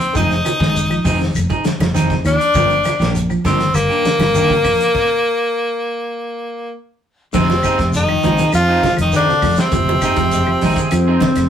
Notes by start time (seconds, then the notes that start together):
Already playing: C4
0.00 muted clean electric guitar stroke, closed hi-hat, shekere
0.13 F1 D3 C4 D#4 G#4, kick, closed hi-hat, low conga, shekere
0.30 snare, shekere
0.44 muted clean electric guitar stroke, closed hi-hat, high conga, claves, shekere
0.59 G#1 D#3 D#4 G#4, kick, snare, shekere
0.75 muted clean electric guitar stroke, closed hi-hat, shekere
0.90 F3, muted clean electric guitar stroke, claves, shekere
1.05 F1 C4 D#4 G#4, kick, open hi-hat, high conga, low conga, shekere
1.20 D#3, muted clean electric guitar stroke, snare, shekere
1.35 F1, closed hi-hat, claves, shekere
1.50 D#4 G#4, kick, low conga, shekere
1.64 D3, muted clean electric guitar stroke, muted fingered electric bass stroke, snare, closed hi-hat, shekere
1.80 F1, muted clean electric guitar stroke, snare, closed hi-hat, high conga, claves, shekere
1.94 D#3 C4 D#4 G#4, snare, closed hi-hat, high conga, shekere
2.10 kick, snare, high conga, shekere
2.25 D#2 F3 D4, muted clean electric guitar stroke, closed hi-hat, claves, shekere
2.40 muted clean electric guitar stroke, closed hi-hat, shekere
2.54 G1 D3 F3 A#3 D4 G4, kick, closed hi-hat, low conga, shekere
2.70 shekere
2.84 muted clean electric guitar stroke, snare, closed hi-hat, high conga, claves, shekere
3.00 A#1 A#2 A#3 D4 G4, snare, closed hi-hat, shekere
3.15 muted clean electric guitar stroke, closed hi-hat, shekere
3.30 F3, muted clean electric guitar stroke, claves, shekere
3.45 G1 F3 A#3 C4 D4 G4, kick, snare, closed hi-hat, high conga, low conga, shekere
3.60 D#3, muted clean electric guitar stroke, snare, closed hi-hat, shekere
3.74 G1 A#3, closed hi-hat, claves, shekere
3.89 A#3 D4 G4, shekere
4.05 D3, muted fingered electric bass stroke, muted clean electric guitar stroke, snare, closed hi-hat, shekere
4.19 G1, muted clean electric guitar stroke, snare, closed hi-hat, high conga, claves, shekere
4.35 D#3 A#3 D4 G4, muted clean electric guitar stroke, closed hi-hat, high conga, shekere
4.50 kick, snare, high conga, shekere
4.64 F1 F3, muted clean electric guitar stroke, kick, open hi-hat, claves, shekere
4.80 muted clean electric guitar stroke, closed hi-hat, shekere
4.95 kick, crash
7.33 F1 D3 C4 D#4 G#4, kick, crash, low conga, shekere
7.37 C3
7.49 muted clean electric guitar stroke, snare, high conga
7.63 C4 D#4 G#4, kick, closed hi-hat, claves, shekere
7.78 F1, muted clean electric guitar stroke, kick, snare, closed hi-hat, shekere
7.93 D#3 D#4, snare, closed hi-hat, shekere
8.08 F3, muted clean electric guitar stroke, claves
8.23 G#1 C4 D#4 G#4, closed hi-hat, high conga, low conga, shekere
8.38 D#3 D#4 G#4, closed hi-hat, low conga, shekere
8.53 F2 F4, muted clean electric guitar stroke, closed hi-hat, claves, shekere
8.58 F3
8.68 C4 D#4 G#4
8.83 D3, muted clean electric guitar stroke, kick, snare, closed hi-hat, high conga
8.97 F1, closed hi-hat, claves, shekere
9.01 D#3 D#4
9.12 D3 D#3 C4 D#4 G#4, snare, closed hi-hat, shekere
9.16 D4
9.28 muted fingered electric bass stroke, muted clean electric guitar stroke, snare, high conga
9.42 F1 F3, muted clean electric guitar stroke, kick, snare, open hi-hat, claves, shekere
9.56 C3 C4, muted clean electric guitar stroke, snare, closed hi-hat, shekere
9.72 F1 D3, kick, closed hi-hat, low conga, shekere
9.89 muted clean electric guitar stroke, high conga
10.02 C4 D#4 G#4, kick, snare, closed hi-hat, claves, shekere
10.16 F1 F3, muted clean electric guitar stroke, kick, snare, closed hi-hat, shekere
10.31 G#3, closed hi-hat, shekere
10.46 F3, muted clean electric guitar stroke, claves
10.60 G#1 G#3 C4 D#4, open hi-hat, high conga, low conga, shekere
10.64 G#4
10.76 D#3 G#4, kick, closed hi-hat, shekere
10.89 F2 C4, muted clean electric guitar stroke, closed hi-hat, claves, shekere
11.08 C4 D#4 G#4
11.20 D3, muted clean electric guitar stroke, kick, snare, closed hi-hat, high conga
11.35 F1, snare, closed hi-hat, claves, shekere